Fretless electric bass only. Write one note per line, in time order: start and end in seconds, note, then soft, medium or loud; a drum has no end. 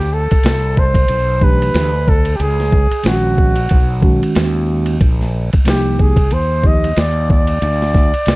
0.00 0.28 D2 loud
0.44 1.06 C2 medium
1.09 1.71 B1 medium
1.75 2.37 D2 medium
2.40 2.89 C#2 medium
2.91 muted fretless electric bass stroke soft
3.05 3.67 A#1 medium
3.71 4.20 B1 medium
4.22 muted fretless electric bass stroke soft
4.36 4.98 D#2 medium
5.01 5.50 A#1 loud
5.66 6.28 C2 medium
6.31 6.93 D#2 medium
6.97 7.59 D#2 medium
7.62 8.11 D2 loud
8.13 muted fretless electric bass stroke soft
8.27 8.36 C2 medium